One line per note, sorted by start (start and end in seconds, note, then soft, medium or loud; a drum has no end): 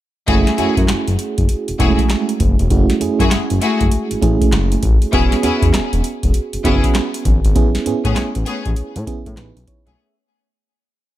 0.27 0.43 F#1 loud
0.27 0.46 A3 medium
0.27 0.53 A3 medium
0.27 0.53 C#4 medium
0.27 0.46 E4 medium
0.27 0.54 E4 medium
0.27 0.46 F#4 medium
0.27 0.46 G#4 loud
0.27 0.54 G#4 medium
0.27 kick medium
0.27 closed hi-hat medium
0.47 snare medium
0.47 closed hi-hat medium
0.58 0.66 F#2 medium
0.58 0.76 A3 medium
0.58 1.55 A3 medium
0.58 1.55 C#4 medium
0.58 0.76 E4 medium
0.58 1.55 E4 medium
0.58 0.76 F#4 medium
0.58 1.55 F#4 medium
0.58 0.76 G#4 medium
0.58 closed hi-hat medium
0.77 0.86 F#2 loud
0.77 kick medium
0.77 closed hi-hat medium
0.88 0.97 F#1 soft
0.88 snare loud
0.88 clap medium
0.88 closed hi-hat medium
1.08 1.17 F#1 medium
1.08 closed hi-hat soft
1.19 closed hi-hat medium
1.38 1.47 F#1 medium
1.38 kick medium
1.38 closed hi-hat soft
1.49 closed hi-hat medium
1.68 1.73 E1 medium
1.68 closed hi-hat soft
1.79 1.95 E1 medium
1.79 1.87 G#3 medium
1.79 1.97 A3 medium
1.79 2.54 C#4 medium
1.79 1.97 E4 medium
1.79 2.54 E4 medium
1.79 1.97 F#4 medium
1.79 1.98 G#4 medium
1.79 2.54 G#4 medium
1.79 kick medium
1.79 closed hi-hat medium
1.85 2.57 A3 medium
1.99 kick medium
1.99 closed hi-hat medium
2.10 snare loud
2.10 clap medium
2.10 closed hi-hat medium
2.29 closed hi-hat medium
2.40 2.55 F#1 medium
2.40 kick medium
2.40 closed hi-hat medium
2.59 2.68 E1 medium
2.59 closed hi-hat medium
2.70 2.86 F#1 loud
2.70 2.96 A3 medium
2.70 2.96 C#4 medium
2.70 2.96 E4 medium
2.70 2.96 F#4 medium
2.70 kick loud
2.70 closed hi-hat medium
2.90 snare medium
2.90 closed hi-hat medium
3.00 3.09 F#2 soft
3.00 3.97 A3 medium
3.00 3.97 C#4 medium
3.00 3.98 E4 medium
3.00 3.98 G#4 medium
3.00 closed hi-hat medium
3.19 3.29 F#2 medium
3.19 3.30 A3 medium
3.19 3.30 E4 medium
3.19 3.30 F#4 medium
3.19 3.31 G#4 medium
3.19 kick medium
3.19 closed hi-hat medium
3.31 3.39 F#1 soft
3.31 snare loud
3.31 clap medium
3.31 closed hi-hat medium
3.50 3.59 F#1 medium
3.50 closed hi-hat soft
3.61 3.79 A3 medium
3.61 3.79 E4 medium
3.61 3.79 F#4 medium
3.61 3.80 G#4 medium
3.61 closed hi-hat medium
3.81 3.90 F#1 medium
3.81 kick medium
3.81 closed hi-hat soft
3.92 closed hi-hat medium
4.11 4.16 A1 soft
4.11 closed hi-hat soft
4.22 4.37 A1 medium
4.22 4.96 A3 medium
4.22 4.96 C#4 medium
4.22 4.97 E4 medium
4.22 4.97 G#4 medium
4.22 kick medium
4.22 closed hi-hat medium
4.41 kick medium
4.41 closed hi-hat medium
4.52 4.76 F#1 loud
4.52 snare loud
4.52 clap medium
4.52 closed hi-hat medium
4.72 closed hi-hat medium
4.83 4.98 A1 medium
4.83 kick loud
4.83 closed hi-hat medium
5.02 closed hi-hat soft
5.13 5.28 E1 loud
5.13 5.31 B3 medium
5.13 5.38 B3 medium
5.13 5.31 C#4 medium
5.13 5.38 C#4 medium
5.13 5.31 E4 medium
5.13 5.39 F#4 medium
5.13 5.31 G#4 loud
5.13 5.39 G#4 medium
5.13 kick loud
5.13 closed hi-hat medium
5.32 snare medium
5.32 closed hi-hat medium
5.43 5.51 E2 medium
5.43 5.61 B3 medium
5.43 6.40 B3 medium
5.43 5.61 C#4 medium
5.43 6.40 C#4 medium
5.43 5.61 E4 medium
5.43 6.40 F#4 medium
5.43 5.61 G#4 medium
5.43 6.40 G#4 medium
5.43 closed hi-hat medium
5.62 5.71 E2 medium
5.62 kick medium
5.62 closed hi-hat medium
5.74 5.81 E1 soft
5.74 snare loud
5.74 clap medium
5.74 closed hi-hat medium
5.93 6.02 E1 medium
5.93 closed hi-hat soft
6.04 closed hi-hat medium
6.23 6.32 E1 medium
6.23 kick medium
6.23 closed hi-hat soft
6.34 closed hi-hat medium
6.53 6.58 F#1 medium
6.53 closed hi-hat soft
6.64 6.80 F#1 medium
6.64 6.82 B3 medium
6.64 7.39 B3 medium
6.64 6.82 C#4 medium
6.64 7.39 C#4 medium
6.64 6.83 E4 medium
6.64 7.39 F#4 medium
6.64 6.83 G#4 medium
6.64 7.39 G#4 medium
6.64 kick medium
6.64 closed hi-hat medium
6.84 kick medium
6.84 closed hi-hat medium
6.95 snare medium
6.95 clap medium
6.95 closed hi-hat medium
7.14 closed hi-hat medium
7.25 7.40 G#1 medium
7.25 kick loud
7.25 closed hi-hat medium
7.45 7.53 G#1 medium
7.45 closed hi-hat medium
7.55 7.71 A1 loud
7.55 7.81 B3 medium
7.55 7.81 C#4 medium
7.55 7.81 E4 medium
7.55 7.81 G#4 medium
7.55 kick loud
7.55 closed hi-hat medium
7.75 snare medium
7.75 closed hi-hat medium
7.86 7.94 A2 soft
7.86 8.82 B3 medium
7.86 8.82 C#4 medium
7.86 8.83 E4 medium
7.86 8.83 G#4 medium
7.86 closed hi-hat medium
8.04 8.14 A2 medium
8.04 8.15 A3 medium
8.04 8.15 B3 medium
8.04 8.15 C#4 medium
8.04 8.15 G#4 medium
8.04 kick medium
8.04 closed hi-hat medium
8.16 8.24 A1 soft
8.16 snare loud
8.16 clap medium
8.16 closed hi-hat medium
8.35 8.44 A1 medium
8.35 closed hi-hat soft
8.46 8.64 A3 medium
8.46 8.64 B3 medium
8.46 8.64 C#4 medium
8.46 8.64 G#4 medium
8.46 closed hi-hat medium
8.65 8.75 A1 medium
8.65 kick medium
8.65 closed hi-hat soft
8.76 closed hi-hat medium
8.96 9.05 A2 medium
8.96 closed hi-hat soft
9.07 9.81 B3 medium
9.07 9.81 C#4 medium
9.07 9.37 E4 medium
9.07 9.38 G#4 medium
9.07 kick medium
9.07 closed hi-hat medium
9.26 9.35 A2 loud
9.26 kick medium
9.26 closed hi-hat medium
9.37 9.52 A1 medium
9.37 9.66 D#4 medium
9.37 9.66 B4 medium
9.37 snare loud
9.37 clap medium
9.37 closed hi-hat medium
9.56 9.65 B1 medium
9.56 closed hi-hat medium
9.68 9.86 E4 medium
9.68 9.86 C#5 medium
9.68 kick loud
9.68 closed hi-hat medium
9.86 9.95 B1 medium
9.86 9.97 A3 medium
9.86 9.97 B3 medium
9.86 9.97 C#4 medium
9.86 9.97 G#4 medium
9.86 10.16 G#4 medium
9.86 10.15 E5 medium
9.86 closed hi-hat soft